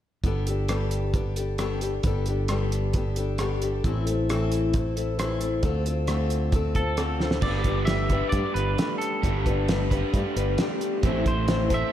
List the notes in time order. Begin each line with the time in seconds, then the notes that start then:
0.24 G1 G3 B3 D4 G4 A4, kick, closed hi-hat
0.47 D4 G4 A4, closed hi-hat
0.68 G3 B3 D4 G4 A4, cross-stick, closed hi-hat
0.91 closed hi-hat
1.14 B3 D4 G4 A4, kick, closed hi-hat
1.36 D4 G4 A4, closed hi-hat
1.58 G3 B3 D4 G4 A4, cross-stick, closed hi-hat
1.81 D4 G4 A4, closed hi-hat
2.03 G1 G3 B3 D4 G4 A4, kick, closed hi-hat
2.26 G4 A4, closed hi-hat
2.30 D4
2.48 G3 B3 D4 G4 A4, cross-stick, closed hi-hat
2.72 closed hi-hat
2.93 B3 D4 G4, kick, closed hi-hat
2.98 A4
3.16 D4 G4 A4, closed hi-hat
3.38 G3 B3 D4 G4 A4, cross-stick, closed hi-hat
3.61 D4 G4 A4, closed hi-hat
3.84 A1 A2 E3 A3 C4 E4 A4, kick, closed hi-hat
4.06 A3 C4 E4 A4, closed hi-hat
4.29 A2 E3 A3 C4 E4 A4, cross-stick, closed hi-hat
4.52 closed hi-hat
4.74 A3 C4 E4, kick, closed hi-hat
4.78 A4
4.96 A3 C4 E4 A4, closed hi-hat
5.18 A2 E3 A3 C4 E4 A4, cross-stick, closed hi-hat
5.40 A3 C4 E4 A4, closed hi-hat
5.63 D2 D3 A3 C4 F4 A4, kick, closed hi-hat
5.85 C4 F4 A4, closed hi-hat
6.07 D3 A3 C4 F4 A4, cross-stick, closed hi-hat
6.30 closed hi-hat
6.52 A3 C4 F4 A4, kick, closed hi-hat
6.75 C4 F4 A4, kick, closed hi-hat
6.97 D3 A3 C4 F4 A4, cross-stick, closed hi-hat
7.20 C4 F4 A4, snare
7.31 snare
7.42 G1 G3 A3 B3 D4 G4 B4 D5, kick, crash
7.64 G4 B4, kick, closed hi-hat
7.69 D4
7.85 G3 A3 D4 E5, snare, closed hi-hat
7.90 G4 B4
8.10 B3 G4 B4, kick, closed hi-hat
8.14 G3 D4
8.29 G2 D5, kick, closed hi-hat
8.34 A3 D4 G4 B4
8.54 G1 G4 B4, closed hi-hat
8.59 D4
8.77 G3 A3 D4 G4 B4, snare, closed hi-hat
8.98 A4, closed hi-hat
9.23 G1 G3 A3 B3 D4 G4 B4, kick, closed hi-hat
9.46 D4 G4 B4, kick, closed hi-hat
9.68 G3 A3 D4 G4 B4, snare, closed hi-hat
9.91 G3 B3 D4 G4 B4, kick, closed hi-hat
10.13 G2 A3 D4 G4 B4, kick, closed hi-hat
10.36 G1 D4 G4 B4, closed hi-hat
10.58 G3 A3 D4 G4 B4, snare, closed hi-hat
10.81 closed hi-hat
11.03 A1 A2 E3 A3 C4 E4 A4 C5, kick, closed hi-hat
11.26 A3 E4 C5, kick, closed hi-hat
11.48 A2 E3 A3 C4 E4 C5, snare, closed hi-hat
11.69 A3 C4 E4 A4 C5, kick, closed hi-hat
11.73 A2 E5